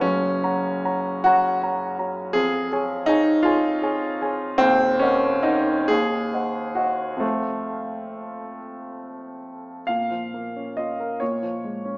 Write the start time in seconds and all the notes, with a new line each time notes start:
0.01 F#1 F#2 C#4
0.43 F#4 C#5 A#5
0.84 F#4 C#5 A#5
1.24 F#4 C#5 A#5
1.63 F#4 C#5 A#5
1.98 F#4 C#5 A#5
2.33 F2 G#4
2.72 G#4 C#5 G#5
3.06 D#4 G#4 C#5 G#5
3.43 F4 G#4 C#5 G#5
3.82 G#4 C#5 G#5
4.21 G#4 C#5 G#5
4.58 D#1 D#2 C4
4.99 C#4 A#4 D#5 F#5
5.43 D#4 A#4 D#5 F#5
5.88 D#2 G#4
6.33 C5 D#5 F#5
6.75 F#4 C5 D#5 F#5
7.16 F2 A3 C5 F5
9.87 A#2 F5
10.11 F3
10.34 A#3
10.56 C#4
10.77 F4 D#5
11.00 A#4
11.20 A#2 C#5
11.42 F3
11.64 G#3
11.85 C#4